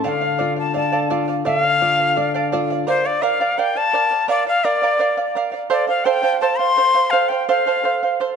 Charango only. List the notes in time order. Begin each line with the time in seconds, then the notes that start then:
0.04 A4 D5 F5
0.21 D5 F5
0.38 A4 D5 F5
0.56 D5 F5
0.73 A4 D5 F5
0.92 A4 D5 F5
1.10 A4 D5 F5
1.28 D5 F5
1.45 A4 D5 F5
1.63 D5 F5
1.81 A4 D5 F5
1.98 D5 F5
2.16 A4 D5 F5
2.34 A4 D5 F5
2.52 A4 D5 F5
2.70 D5 F5
2.87 A#4 D5 F5
3.05 D5 F5
3.22 A#4 D5 F5
3.41 A#4 D5 F5
3.58 A#4 D5 F5
3.75 D5 F5
3.93 A#4 D5 F5
4.11 D5 F5
4.28 A#4 D5 F5
4.47 D5 F5
4.64 A#4 D5 F5
4.82 A#4 D5 F5
4.99 A#4 D5 F5
5.17 D5 F5
5.35 A#4 D5 F5
5.52 D5 F5
5.70 A4 C5 F5
5.87 C5 F5
6.05 A4 C5 F5
6.23 A4 C5 F5
6.41 A4 C5 F5
6.59 C5 F5
6.76 A4 C5 F5
6.94 C5 F5
7.12 A4 C5 F5
7.30 C5 F5
7.49 A4 C5 F5
7.67 A4 C5 F5
7.83 A4 C5 F5
8.03 C5 F5
8.20 A4 C5 F5